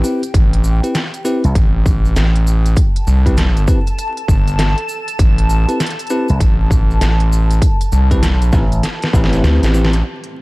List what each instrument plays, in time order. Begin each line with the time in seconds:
Already playing: ambient pad G5
0.04 tine electric piano C4 E4 G4 B4, cabasa
0.23 closed hi-hat, cabasa
0.34 analog synth bass A1, kick, closed hi-hat, cabasa
0.53 closed hi-hat
0.64 cabasa
0.83 tine electric piano C4 E4 G4 B4, closed hi-hat, cabasa
0.95 snare, closed hi-hat, cabasa
1.14 closed hi-hat, cabasa
1.25 tine electric piano C4 E4 G4 B4, cabasa
1.44 slap bass C2, closed hi-hat, cabasa
1.55 analog synth bass A1, kick, closed hi-hat, cabasa
1.86 kick, cabasa
2.05 cabasa
2.13 analog synth bass A1, ambient pad A5, snare, closed hi-hat, cabasa
2.35 closed hi-hat
2.47 cabasa
2.66 closed hi-hat, cabasa
2.76 kick, closed hi-hat, cabasa
2.96 closed hi-hat
3.07 analog synth bass C2, cabasa
3.26 tine electric piano C4 E4 G4 B4, kick, closed hi-hat, cabasa
3.37 snare, closed hi-hat, cabasa
3.57 closed hi-hat, cabasa
3.67 tine electric piano C4 E4 G4 B4, kick, cabasa
3.87 closed hi-hat, cabasa
3.98 closed hi-hat, cabasa
4.17 closed hi-hat
4.28 analog synth bass G1, kick, cabasa
4.48 closed hi-hat, cabasa
4.59 snare, closed hi-hat, cabasa
4.78 closed hi-hat
4.89 cabasa
5.08 closed hi-hat, cabasa
5.19 analog synth bass A1, kick, closed hi-hat, cabasa
5.38 closed hi-hat
5.50 cabasa
5.68 tine electric piano C4 E4 G4 B4, closed hi-hat, cabasa
5.80 snare, closed hi-hat, cabasa
5.86 closed hi-hat
5.90 closed hi-hat
5.99 closed hi-hat, cabasa
6.07 tine electric piano C4 E4 G4 B4, closed hi-hat, cabasa
6.28 slap bass C2, closed hi-hat, cabasa
6.40 analog synth bass A1, kick, closed hi-hat, cabasa
6.71 kick, cabasa
6.91 cabasa
7.01 analog synth bass A1, snare, closed hi-hat, cabasa
7.20 closed hi-hat
7.32 cabasa
7.51 closed hi-hat, cabasa
7.62 kick, closed hi-hat, cabasa
7.81 closed hi-hat, cabasa
7.92 analog synth bass C2, cabasa
8.11 tine electric piano C4 E4 G4 B4, kick, closed hi-hat, cabasa
8.23 snare, closed hi-hat, cabasa
8.34 analog synth bass B1
8.42 closed hi-hat, cabasa
8.52 slap bass A1, tine electric piano C4 E4 G4 B4, kick, snare, cabasa
8.72 closed hi-hat, cabasa
8.83 snare, closed hi-hat, cabasa
9.02 snare, closed hi-hat
9.13 slap bass A1, tine electric piano C4 E4 G4 B4, kick, cabasa
9.24 snare
9.32 tine electric piano C4 E4 G4 B4, closed hi-hat, cabasa
9.44 analog synth bass D2, snare, cabasa
9.63 analog synth bass A1, snare, closed hi-hat, cabasa
9.74 tine electric piano C4 E4 G4 B4, cabasa
9.85 snare
9.93 closed hi-hat, cabasa
10.04 analog synth pad A3 E4 G4 C5, ambient pad C4
10.24 closed hi-hat
10.33 ambient pad G5